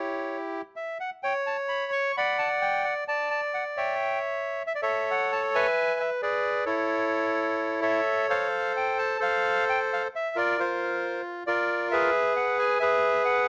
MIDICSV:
0, 0, Header, 1, 2, 480
1, 0, Start_track
1, 0, Tempo, 460123
1, 1281, Time_signature, 4, 2, 24, 8
1, 4154, Tempo, 450789
1, 7994, Tempo, 462250
1, 10394, Tempo, 449775
1, 14215, End_track
2, 0, Start_track
2, 0, Title_t, "Bandoneon"
2, 0, Program_c, 0, 23
2, 0, Note_on_c, 0, 64, 54
2, 0, Note_on_c, 0, 67, 53
2, 0, Note_on_c, 0, 73, 66
2, 393, Note_off_c, 0, 73, 0
2, 643, Note_off_c, 0, 64, 0
2, 643, Note_off_c, 0, 67, 0
2, 793, Note_on_c, 0, 76, 75
2, 1021, Note_off_c, 0, 76, 0
2, 1044, Note_on_c, 0, 78, 75
2, 1151, Note_off_c, 0, 78, 0
2, 1283, Note_on_c, 0, 79, 93
2, 1294, Note_on_c, 0, 73, 67
2, 1390, Note_off_c, 0, 79, 0
2, 1529, Note_on_c, 0, 81, 81
2, 1635, Note_off_c, 0, 81, 0
2, 1757, Note_on_c, 0, 83, 88
2, 1984, Note_off_c, 0, 83, 0
2, 2007, Note_on_c, 0, 85, 97
2, 2209, Note_off_c, 0, 73, 0
2, 2253, Note_off_c, 0, 85, 0
2, 2266, Note_on_c, 0, 83, 96
2, 2267, Note_on_c, 0, 78, 68
2, 2273, Note_on_c, 0, 74, 69
2, 2479, Note_off_c, 0, 83, 0
2, 2489, Note_on_c, 0, 81, 91
2, 2595, Note_off_c, 0, 81, 0
2, 2728, Note_on_c, 0, 79, 91
2, 2947, Note_off_c, 0, 78, 0
2, 2963, Note_on_c, 0, 78, 89
2, 2971, Note_off_c, 0, 79, 0
2, 3070, Note_off_c, 0, 78, 0
2, 3173, Note_off_c, 0, 74, 0
2, 3214, Note_on_c, 0, 74, 68
2, 3214, Note_on_c, 0, 81, 94
2, 3435, Note_off_c, 0, 81, 0
2, 3450, Note_on_c, 0, 81, 90
2, 3555, Note_off_c, 0, 81, 0
2, 3694, Note_on_c, 0, 78, 79
2, 3798, Note_off_c, 0, 78, 0
2, 3932, Note_on_c, 0, 73, 67
2, 3933, Note_on_c, 0, 76, 66
2, 3941, Note_on_c, 0, 79, 79
2, 4119, Note_off_c, 0, 74, 0
2, 4374, Note_off_c, 0, 79, 0
2, 4839, Note_off_c, 0, 73, 0
2, 4840, Note_off_c, 0, 76, 0
2, 4884, Note_on_c, 0, 76, 98
2, 4948, Note_off_c, 0, 76, 0
2, 4973, Note_on_c, 0, 74, 82
2, 5033, Note_off_c, 0, 74, 0
2, 5047, Note_on_c, 0, 76, 91
2, 5050, Note_on_c, 0, 73, 71
2, 5052, Note_on_c, 0, 69, 73
2, 5344, Note_off_c, 0, 76, 0
2, 5352, Note_on_c, 0, 78, 99
2, 5575, Note_off_c, 0, 78, 0
2, 5581, Note_on_c, 0, 81, 95
2, 5691, Note_off_c, 0, 81, 0
2, 5824, Note_on_c, 0, 80, 114
2, 5827, Note_on_c, 0, 76, 77
2, 5828, Note_on_c, 0, 71, 82
2, 5949, Note_off_c, 0, 73, 0
2, 5950, Note_off_c, 0, 69, 0
2, 6287, Note_off_c, 0, 76, 0
2, 6303, Note_on_c, 0, 76, 90
2, 6319, Note_off_c, 0, 80, 0
2, 6412, Note_off_c, 0, 76, 0
2, 6529, Note_off_c, 0, 71, 0
2, 6539, Note_on_c, 0, 68, 63
2, 6541, Note_on_c, 0, 74, 89
2, 6545, Note_on_c, 0, 71, 63
2, 6988, Note_off_c, 0, 68, 0
2, 6990, Note_off_c, 0, 74, 0
2, 6992, Note_off_c, 0, 71, 0
2, 7003, Note_on_c, 0, 73, 82
2, 7004, Note_on_c, 0, 69, 58
2, 7009, Note_on_c, 0, 64, 61
2, 8212, Note_off_c, 0, 73, 0
2, 8220, Note_off_c, 0, 69, 0
2, 8228, Note_on_c, 0, 73, 68
2, 8236, Note_on_c, 0, 69, 69
2, 8241, Note_on_c, 0, 76, 94
2, 8427, Note_off_c, 0, 64, 0
2, 8691, Note_off_c, 0, 76, 0
2, 8706, Note_off_c, 0, 69, 0
2, 8722, Note_on_c, 0, 69, 67
2, 8728, Note_on_c, 0, 72, 69
2, 8738, Note_on_c, 0, 77, 90
2, 8917, Note_off_c, 0, 73, 0
2, 9177, Note_off_c, 0, 77, 0
2, 9220, Note_on_c, 0, 79, 92
2, 9434, Note_off_c, 0, 79, 0
2, 9448, Note_on_c, 0, 81, 98
2, 9639, Note_off_c, 0, 69, 0
2, 9642, Note_off_c, 0, 72, 0
2, 9667, Note_off_c, 0, 81, 0
2, 9667, Note_on_c, 0, 69, 78
2, 9670, Note_on_c, 0, 72, 78
2, 9693, Note_on_c, 0, 77, 104
2, 10130, Note_off_c, 0, 77, 0
2, 10181, Note_on_c, 0, 79, 105
2, 10281, Note_off_c, 0, 79, 0
2, 10429, Note_on_c, 0, 77, 97
2, 10529, Note_off_c, 0, 77, 0
2, 10584, Note_off_c, 0, 69, 0
2, 10586, Note_off_c, 0, 72, 0
2, 10667, Note_on_c, 0, 76, 97
2, 10884, Note_on_c, 0, 70, 72
2, 10886, Note_on_c, 0, 65, 70
2, 10897, Note_off_c, 0, 76, 0
2, 10905, Note_on_c, 0, 74, 99
2, 11109, Note_off_c, 0, 65, 0
2, 11125, Note_on_c, 0, 65, 60
2, 11135, Note_off_c, 0, 74, 0
2, 11142, Note_on_c, 0, 72, 78
2, 11794, Note_off_c, 0, 70, 0
2, 11803, Note_off_c, 0, 72, 0
2, 12032, Note_off_c, 0, 65, 0
2, 12067, Note_on_c, 0, 74, 89
2, 12074, Note_on_c, 0, 65, 67
2, 12078, Note_on_c, 0, 70, 68
2, 12510, Note_off_c, 0, 74, 0
2, 12544, Note_on_c, 0, 76, 107
2, 12559, Note_on_c, 0, 68, 75
2, 12562, Note_on_c, 0, 71, 77
2, 12745, Note_off_c, 0, 65, 0
2, 12747, Note_off_c, 0, 70, 0
2, 12992, Note_off_c, 0, 76, 0
2, 13024, Note_on_c, 0, 78, 91
2, 13248, Note_off_c, 0, 78, 0
2, 13269, Note_on_c, 0, 80, 95
2, 13471, Note_off_c, 0, 68, 0
2, 13473, Note_off_c, 0, 71, 0
2, 13490, Note_on_c, 0, 76, 106
2, 13511, Note_on_c, 0, 71, 74
2, 13513, Note_on_c, 0, 68, 74
2, 13515, Note_off_c, 0, 80, 0
2, 13946, Note_off_c, 0, 76, 0
2, 13969, Note_on_c, 0, 78, 102
2, 14204, Note_off_c, 0, 78, 0
2, 14215, Note_off_c, 0, 68, 0
2, 14215, Note_off_c, 0, 71, 0
2, 14215, End_track
0, 0, End_of_file